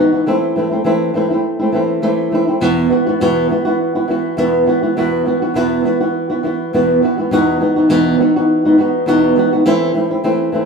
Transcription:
nylon-string guitar
Already playing: E3
0.00 B3 D#4 F#4
0.13 E3 B3 D#4 F#4
0.26 E3 A3 C4 E4
0.56 E3 A3 C4 E4
0.71 A3 C4 E4
0.84 E3 A3 C4 E4
1.14 E3 A3 C4 E4
1.30 A3 C4 E4
1.59 A3 C4 E4
1.72 E3 A3 C4 E4
2.02 E3 A3 C4 E4
2.31 E3 A3 C4 E4
2.47 A3 C4 E4
2.61 E2 B2 E3 B3 E4 F#4
2.90 E3 B3 E4 F#4
3.06 E3 B3 E4 F#4
3.21 E2 B2 E3 B3 E4 F#4
3.49 E3 B3 E4 F#4
3.65 E3 B3 E4 F#4
3.95 E3 B3 E4 F#4
4.08 E3 B3 E4 F#4
4.37 E2 B2 E3 B3 E4 F#4
4.66 E3 B3 E4 F#4
4.82 E3 B3 E4 F#4
4.97 E2 B2 E3 B3 E4 F#4
5.25 E3 B3 E4 F#4
5.42 E3 B3 E4 F#4
5.54 E2 B2 E3 B3 E4 F#4
5.84 E3 B3 E4 F#4
6.00 E3 B3 E4 F#4
6.30 E3 B3 E4 F#4
6.43 E3 B3 E4 F#4
6.73 E2 B2 E3 B3 E4 F#4
7.02 E3 B3 E4 F#4
7.18 E3 B3 E4 F#4
7.31 E2 B2 E3 B3 D#4 F#4
7.60 E3 B3 D#4 F#4
7.76 E3 B3 D#4 F#4
7.89 E2 B2 E3 B3 D#4 F#4
8.19 E3 B3 D#4 F#4
8.36 E3 B3 D#4 F#4
8.65 E3 B3 D#4 F#4
8.78 E3 B3 D#4 F#4
9.06 E2 B2 E3 B3 D#4 F#4
9.36 E3 B3 D#4 F#4
9.53 E3 B3 D#4 F#4
9.65 E3 A3 C4 E4
9.94 E3 A3 C4 E4
10.11 A3 C4 E4
10.24 E3 A3 C4 E4
10.52 E3 A3 C4 E4

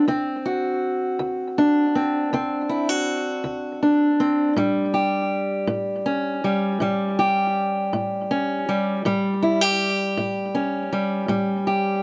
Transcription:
steel-string acoustic guitar
0.08 D2 C4
0.46 F#4
1.19 D2
1.58 D4
1.95 C4
2.33 D2 C4
2.69 E4
2.89 F#4
3.44 D2
3.83 D4
4.20 C4
4.56 A2 G3
4.94 G4
5.67 A2
6.06 C#4
6.44 G3
6.80 A2 G3
7.19 G4
7.93 A2
8.31 C#4
8.69 G3
9.05 A2 G3
9.43 E4
9.61 G4
10.17 A2
10.55 C#4
10.93 G3
11.28 A2 G3
11.67 G4

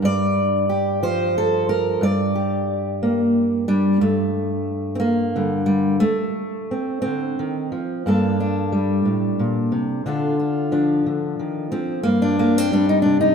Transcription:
steel-string acoustic guitar
Already playing: G3
0.02 G2 D5
0.69 G4
1.03 F3 C5
1.38 A4
1.69 A#4
2.01 G2 D5
2.35 G4
3.03 A#3
3.68 G3 D4
4.01 G2 A3
4.95 C4
5.00 A#3
5.36 D3 G3
5.66 G3
6.00 A3
6.71 C4
7.02 D3 C4
7.39 D#3
7.72 F3
8.06 G2 A#3 D4 A4
8.40 D4
8.72 G3
9.05 A2
9.39 A#2
9.72 C3
10.06 D3 D4 F4 A4
10.39 F4
10.72 F3 D4
11.06 D3
11.39 D#3
11.72 F3 C4
12.03 G2 A#3
12.22 D4
12.39 A#3
12.58 C4
12.72 G3 D4
12.89 D#4
13.02 C3 D4
13.21 D#4

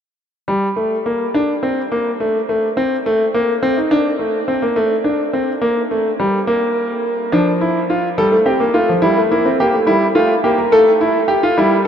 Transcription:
grand piano
0.48 G3
0.76 A3
1.06 A#3
1.34 D4
1.63 C4
1.92 A#3
2.20 A3
2.49 A3
2.77 C4
3.06 A3
3.34 A#3
3.63 C4
3.77 D#4
3.91 D4
4.19 A3
4.48 C4
4.62 A#3
4.76 A3
5.04 D4
5.33 C4
5.61 A#3
5.91 A3
6.20 G3
6.47 A#3
7.32 F3 D4
7.61 E4
7.90 F4
8.18 G3 A4
8.32 A3
8.46 C4 G4
8.60 A#3
8.74 A3 F4
8.89 F3
9.02 G3 E4
9.17 A3
9.31 A#3 E4
9.46 C4
9.60 A#3 G4
9.73 A3
9.86 G3 E4
10.15 A3 F4
10.44 A#3 G4
10.58 A#4
10.72 A3 A4
11.01 E4
11.28 G4
11.43 F4
11.58 G3 E4

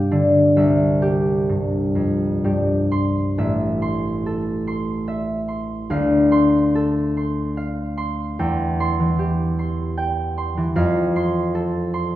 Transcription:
harp
Already playing: G2 G4 F5
0.11 D3
0.56 C2 E5
1.02 G4
1.49 G2
1.95 F2
2.44 G2 G4
2.92 C6
3.38 A1 E5
3.82 C6
4.26 A4
4.67 C6
5.08 E5
5.48 C6
5.90 D2 F5
6.32 C6
6.75 A4
7.17 C6
7.57 F5
7.97 C6
8.39 E2 G5
8.80 C6
9.00 E3
9.19 G4
9.59 C6
9.97 G5
10.38 C6
10.57 E3
10.76 F2 F5
11.16 C6
11.55 A4
11.94 C6

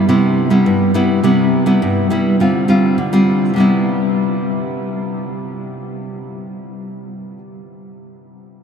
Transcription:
nylon-string guitar
0.09 C3 G3 B3 E4
0.50 G3 B3 E4
0.66 G2
0.94 G3 B3 E4
1.23 C3 G3 B3 E4
1.66 G3 B3 E4
1.82 G2
2.10 G3 B3 E4
2.40 D3 G3 C4 F4
2.68 G3 C4 F4
2.98 D3
3.13 G3 C4 F4
3.54 C3 G3
3.58 B3 E4

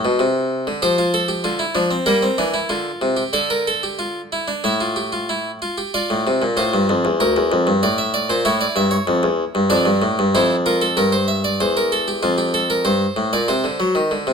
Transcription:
harpsichord
Already playing: A4
0.05 B2
0.19 C3
0.67 D3
0.82 F3 G4 C5
0.98 F4
1.14 A4
1.28 G4
1.44 D3 F4
1.59 E4
1.75 F3 D4
1.91 C4
2.06 G3 A#3 A#4
2.22 C4
2.38 E3 D4
2.54 E4
2.69 D3 F4
3.02 C3
3.17 G4
3.33 D3 A4 D5
3.50 A#4
3.67 A4
3.83 G4
3.99 F4
4.32 E4
4.48 D4
4.64 A2 E4 E5
4.81 F4
4.96 G4
5.12 F4
5.29 E4
5.62 F4
5.78 G4
5.94 F4 D5
6.10 A2
6.27 C3
6.42 A#2
6.57 A2 F4 C5
6.74 G2
6.89 F2
7.05 E2
7.20 D2 A#4
7.36 E2
7.52 F2
7.67 G2
7.83 A2 D5
7.98 E5
8.14 D5
8.30 A#2 C5
8.45 A2 E4 C#5
8.61 D5
8.76 G2 E5
8.91 C#5
9.07 F2
9.23 E2
9.55 G2
9.70 F2 D4 D5
9.85 G2
10.02 A2
10.19 G2
10.35 F2 E4 C5
10.66 F4 A#4
10.82 A4
10.97 G2 A#4
11.12 C5
11.28 E5
11.44 D5
11.60 E2 C5
11.77 A#4
11.92 A4
12.08 G4
12.23 F2 F4
12.38 G4
12.54 A4
12.70 A#4
12.85 G2 C5
13.16 A2
13.33 A#2 D5
13.48 C3 C5
13.64 D3
13.80 F#3
13.95 D#3
14.11 D3
14.27 C3

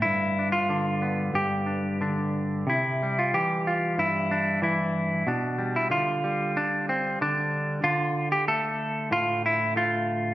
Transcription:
clean electric guitar
Already playing: D3
0.02 G2 E4
0.39 D4
0.52 F4
0.69 D3 D4
1.02 B3
1.34 G2 G4
1.66 D4
2.01 D3 D4
2.67 C3 E4
3.03 G3
3.19 F4
3.34 E3 G4
3.67 F4
3.98 G2 E4
4.31 D4
4.62 E3 E4
5.27 B2 D4
5.58 G3
5.76 E4
5.90 D3 F4
6.24 G3
6.57 D4
6.89 C4
7.21 D3 D4
7.84 D3 F4
8.32 G4
8.48 A3 A4
9.11 A2 F4
9.46 E4
9.76 A3 F4

